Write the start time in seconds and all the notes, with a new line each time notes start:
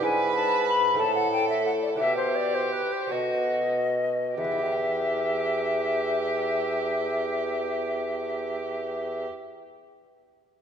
0.00 G#2 D4 E4 B4 G#5
0.35 A5
0.69 B5
0.94 C4 E4 A4
0.98 A2 A4 A5
1.15 F#5
1.32 G5
1.49 E5
1.66 F#5
1.83 D5
1.96 B2 B3 E4 G4 E5
2.00 B2 G4
2.17 C5
2.36 D5
2.55 C5
2.72 B4
2.93 C5
3.07 B3 F#4 A4
3.11 B2 F#4 D#5
4.37 E2 E3 G4 E5
4.44 B3
4.52 E4
4.58 G4
4.66 B4
4.72 G5